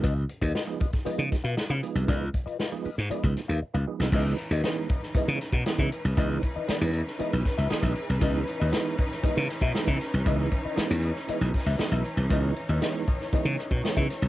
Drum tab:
CC |----------------|----------------|x---------------|----------------|
HH |x-xx-xxxxxxx--xx|x-xx--oxxxxx----|--x-x-x-x-x-x-x-|x-x-x-x-x-x-x-x-|
SD |----o--o--o-o---|----o--o--o----o|----o--o--o-o---|----o--o--o-o---|
BD |o--o--oo--o-----|o-o------o------|o-----o-o--o-o--|o-o-------o--o--|

CC |----------------|----------------|----------------|
HH |x-x-x-x-x-x-x-x-|x-x-x-x-x-o-x-x-|x-x-x-x-x-x-x-x-|
SD |----o--o--o-o-o-|----o--o--o-o---|----o--o--o-o-o-|
BD |o-----o-o--o-o--|o-o-------o-----|o-----o-o--o-o--|